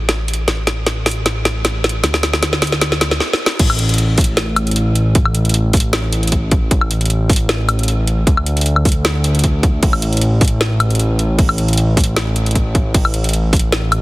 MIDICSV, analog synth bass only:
0, 0, Header, 1, 2, 480
1, 0, Start_track
1, 0, Tempo, 389610
1, 588, Time_signature, 4, 2, 24, 8
1, 17266, End_track
2, 0, Start_track
2, 0, Title_t, "Analog synth bass"
2, 0, Program_c, 0, 38
2, 0, Note_on_c, 0, 33, 86
2, 565, Note_off_c, 0, 33, 0
2, 587, Note_on_c, 0, 33, 89
2, 2485, Note_off_c, 0, 33, 0
2, 2507, Note_on_c, 0, 38, 87
2, 3948, Note_off_c, 0, 38, 0
2, 4428, Note_on_c, 0, 33, 87
2, 8246, Note_off_c, 0, 33, 0
2, 8267, Note_on_c, 0, 33, 85
2, 10165, Note_off_c, 0, 33, 0
2, 10186, Note_on_c, 0, 38, 85
2, 12085, Note_off_c, 0, 38, 0
2, 12106, Note_on_c, 0, 33, 94
2, 15925, Note_off_c, 0, 33, 0
2, 15947, Note_on_c, 0, 33, 87
2, 17266, Note_off_c, 0, 33, 0
2, 17266, End_track
0, 0, End_of_file